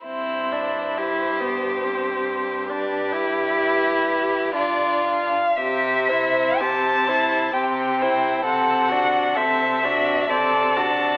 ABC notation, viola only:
X:1
M:3/4
L:1/8
Q:1/4=65
K:C
V:1 name="Viola"
C D E B, C2 | D E3 D2 | C E C E C E | C D C D C D |]